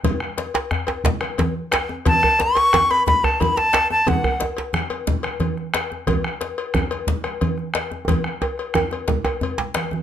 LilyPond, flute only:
\new Staff \with { instrumentName = "Flute" } { \time 12/8 \key a \major \tempo 4. = 120 r1. | a''4 cis'''4. b''8 b''8 a''8 b''8 a''4 a''8 | fis''4 r1 r4 | r1. |
r1. | }